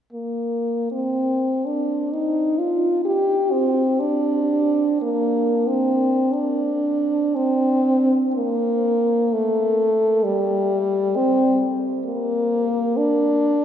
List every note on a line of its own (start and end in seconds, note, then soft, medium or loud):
0.13 0.88 A#3 soft
0.92 1.67 C4 soft
1.66 2.14 D4 soft
2.13 2.60 D#4 soft
2.58 3.04 F4 soft
3.05 3.53 G4 medium
3.52 4.01 C4 medium
4.00 5.01 D4 soft
5.02 5.69 A#3 medium
5.67 6.34 C4 soft
6.32 7.37 D4 soft
7.35 8.18 C4 medium
8.35 9.34 A#3 medium
9.33 10.25 A3 medium
10.24 11.18 G3 medium
11.16 11.61 C4 medium
12.05 12.98 A#3 medium
12.97 13.65 D4 medium